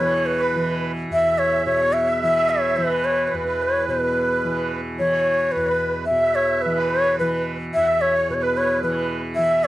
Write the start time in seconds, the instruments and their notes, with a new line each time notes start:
Already playing: tanpura E2 B2, accordion B4
0.00 tanpura E3, bansuri C#5
0.12 accordion C#5
0.26 bansuri B4
0.40 accordion B4
0.55 tanpura E3
1.10 tanpura E2, bansuri E5
1.25 accordion E5
1.38 bansuri C#5
1.66 tanpura B2, bansuri C#5
1.79 accordion C#5
1.93 bansuri E5
2.07 accordion E5
2.23 tanpura E3, bansuri E5
2.36 accordion E5
2.50 bansuri C#5
2.77 tanpura E3, bansuri B4
2.90 accordion B4
3.05 bansuri C#5
3.27 bansuri C#5
3.33 tanpura E2, bansuri B4
3.46 accordion B4
3.63 bansuri C#5
3.88 tanpura B2, bansuri B4
4.02 accordion B4
4.44 tanpura E3
4.99 tanpura E3, bansuri C#5
5.12 accordion C#5
5.52 tanpura E2, bansuri B4
5.67 accordion B4
6.05 bansuri E5
6.11 tanpura B2
6.21 accordion E5
6.35 bansuri C#5
6.62 tanpura E3, bansuri B4
6.77 accordion B4
6.89 bansuri C#5
7.19 tanpura E3, bansuri B4
7.32 accordion B4
7.74 tanpura E2, bansuri E5
7.80 accordion F#5
7.85 accordion E5
8.01 bansuri C#5
8.14 accordion C#5
8.30 tanpura B2, bansuri B4
8.34 bansuri C#5
8.41 accordion B4, bansuri B4
8.57 bansuri C#5
8.83 tanpura E3, bansuri B4
8.89 accordion C#5
8.96 accordion B4
9.35 tanpura E3, bansuri E5
9.49 accordion E5